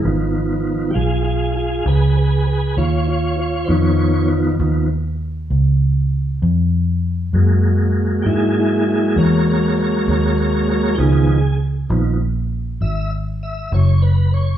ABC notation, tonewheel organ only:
X:1
M:12/8
L:1/8
Q:3/8=66
K:Dbmix
V:1 name="Tonewheel organ"
z3 [F=GA] [FA] [FA] [Ac] [Ac] [Ac] [Fd] [Fd] [Fd] | [=cd]2 z8 z2 | z3 [_F=GA] [FA] [FA] [Bd] [Bd] [Bd] [Bd] [Bd] [Bd] | [=GA]2 z4 _f z f d c d |]
V:2 name="Tonewheel organ" clef=bass
[E,F,C]3 z8 z | [E,F,C]3 [E,F,C] z8 | [G,A,B,]12 | [E,F,C] z2 [E,F,C] z8 |]